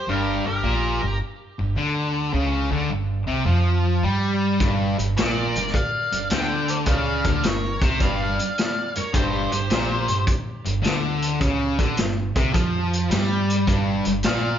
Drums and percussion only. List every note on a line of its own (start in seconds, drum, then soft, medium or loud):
4.60 kick loud
4.60 closed hi-hat medium
4.99 closed hi-hat medium
5.17 snare loud
5.17 closed hi-hat medium
5.56 closed hi-hat medium
5.67 snare soft
5.74 kick medium
5.74 closed hi-hat medium
6.12 closed hi-hat medium
6.30 snare loud
6.30 closed hi-hat medium
6.68 closed hi-hat medium
6.86 kick loud
6.86 closed hi-hat loud
7.24 kick medium
7.24 closed hi-hat medium
7.43 snare loud
7.43 closed hi-hat loud
7.82 kick loud
7.82 closed hi-hat medium
8.00 kick loud
8.00 closed hi-hat medium
8.39 closed hi-hat medium
8.58 snare loud
8.58 closed hi-hat medium
8.95 closed hi-hat medium
9.14 kick loud
9.14 closed hi-hat medium
9.52 closed hi-hat medium
9.70 snare loud
9.70 closed hi-hat medium
10.08 closed hi-hat medium
10.27 kick loud
10.27 closed hi-hat medium
10.65 closed hi-hat medium
10.84 snare loud
10.84 closed hi-hat medium
11.22 closed hi-hat medium
11.41 kick loud
11.41 closed hi-hat medium
11.79 kick medium
11.79 closed hi-hat medium
11.97 snare loud
11.97 closed hi-hat loud
12.36 kick loud
12.36 closed hi-hat medium
12.54 kick loud
12.54 closed hi-hat medium
12.93 closed hi-hat medium
13.11 snare loud
13.11 closed hi-hat medium
13.50 closed hi-hat medium
13.67 kick loud
13.67 closed hi-hat medium
14.05 closed hi-hat medium
14.23 snare loud
14.23 closed hi-hat medium